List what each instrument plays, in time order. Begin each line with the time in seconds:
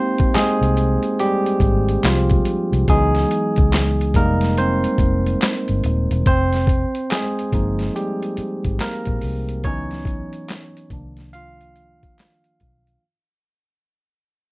Already playing: tine electric piano G#3 A#3 C4 D#4 G4 C5
0.18 kick, closed hi-hat
0.34 tine electric piano G#3 G#4, muted fingered electric bass stroke, snare, clap, closed hi-hat
0.61 fingered electric bass C2, closed hi-hat
0.77 closed hi-hat
1.03 closed hi-hat
1.20 tine electric piano G3 G4, closed hi-hat
1.46 closed hi-hat
1.60 fingered electric bass G#1, kick, closed hi-hat
1.89 closed hi-hat
2.03 fingered electric bass C2, tine electric piano F3 F4, snare, clap, closed hi-hat
2.30 kick, closed hi-hat
2.45 closed hi-hat
2.72 fingered electric bass C2, closed hi-hat
2.88 fingered electric bass C#2, tine electric piano E3 F#3 G#3 B3 D#4 G#4, kick, closed hi-hat
3.15 snare, closed hi-hat
3.31 closed hi-hat
3.56 fingered electric bass C#2, kick, closed hi-hat
3.72 snare, clap, closed hi-hat
4.01 closed hi-hat
4.14 fingered electric bass F1, tine electric piano G3 G#3 A#3 D#4 A#4, kick, closed hi-hat
4.41 snare, closed hi-hat
4.57 tine electric piano C4 C5, closed hi-hat
4.84 closed hi-hat
4.98 fingered electric bass F1, kick, closed hi-hat
5.26 closed hi-hat
5.41 snare, clap, closed hi-hat
5.68 fingered electric bass G1, closed hi-hat
5.84 fingered electric bass D#1, closed hi-hat
6.11 fingered electric bass E1, closed hi-hat
6.26 fingered electric bass F1, tine electric piano C4 C5, kick, closed hi-hat
6.53 snare, closed hi-hat
6.67 kick, closed hi-hat
6.95 closed hi-hat
7.10 tine electric piano G#3 G#4, snare, clap, closed hi-hat
7.39 closed hi-hat
7.52 fingered electric bass G1, tine electric piano F3 G#3 A#3 D#4, kick, closed hi-hat
7.79 snare, closed hi-hat
7.96 tine electric piano G3 G4, closed hi-hat
8.23 closed hi-hat
8.37 muted fingered electric bass stroke, closed hi-hat
8.65 fingered electric bass G#1, kick, closed hi-hat
8.80 tine electric piano A#3 A#4, snare, clap, closed hi-hat
9.06 fingered electric bass A#1, kick, closed hi-hat
9.22 fingered electric bass C2, open hi-hat
9.49 closed hi-hat
9.64 fingered electric bass C#2, tine electric piano E3 F#3 B3 C#4 D#4 C#5, kick, closed hi-hat
9.91 snare, closed hi-hat
10.05 kick, closed hi-hat
10.33 closed hi-hat
10.48 snare, clap, closed hi-hat
10.77 closed hi-hat
10.90 fingered electric bass C2, tine electric piano D#3 F3 A#3 D4, kick, closed hi-hat
11.17 snare, closed hi-hat
11.33 tine electric piano F4 F5, closed hi-hat
11.61 closed hi-hat
11.76 closed hi-hat
12.03 kick, closed hi-hat
12.18 snare, clap, closed hi-hat
12.44 closed hi-hat
12.60 fingered electric bass B1, kick, closed hi-hat
12.87 closed hi-hat